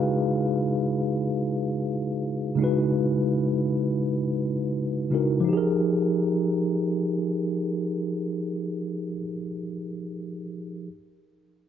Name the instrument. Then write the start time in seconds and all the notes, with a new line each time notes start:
tine electric piano
Already playing: C#3 G#3 D#4 E4 F#4 G#4 B4 F5
2.55 C#3 G#3 D#4
2.60 E4 F#4 B4
5.10 C#3 G#3 D#4 E4 F#4
5.15 A#4
5.40 F3
5.45 D#4
5.49 G4
5.53 G#4
5.57 A#4